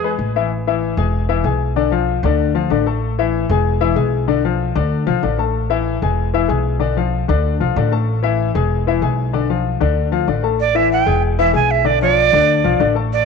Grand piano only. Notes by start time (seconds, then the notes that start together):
0.04 G#3 G#4 B4
0.36 E3 E4 E5
0.67 E3 E4 E5
0.98 G#3 G#4 G#5
1.29 E3 E4 E5
1.45 G#3 G#4 G#5
1.76 D3 D4 D5
1.91 F3 F4 F5
2.24 D3 D4 D5
2.55 F3 F4 F5
2.71 D3 D4 D5
2.86 A3 A4 A5
3.19 E3 E4 E5
3.50 G#3 G#4 G#5
3.81 E3 E4 E5
3.96 G#3 G#4 G#5
4.28 D3 D4 D5
4.45 F3 F4 F5
4.75 D3 D4 D5
5.07 F3 F4 F5
5.23 D3 D4 D5
5.38 A3 A4 A5
5.70 E3 E4 E5
6.02 G#3 G#4 G#5
6.34 E3 E4 E5
6.48 G#3 G#4 G#5
6.79 D3 D4 D5
6.97 F3 F4 F5
7.28 D3 D4 D5
7.60 F3 F4 F5
7.77 D3 D4 D5
7.92 A3 A4 A5
8.23 E3 E4 E5
8.55 G#3 G#4 G#5
8.87 E3 E4 E5
9.02 G#3 G#4 G#5
9.33 D3 D4 D5
9.50 F3 F4 F5
9.80 D3 D4 D5
10.12 F3 F4 F5
10.28 D3 D4 D5
10.43 A3 A4 A5
10.75 E3 E4 E5
11.06 G#3 G#4 G#5
11.39 E3 E4 E5
11.53 G#3 G#4 G#5
11.85 D3 D4 D5
12.02 F3 F4 F5
12.33 D3 D4 D5
12.64 F3 F4 F5
12.80 D3 D4 D5
12.95 A3 A4 A5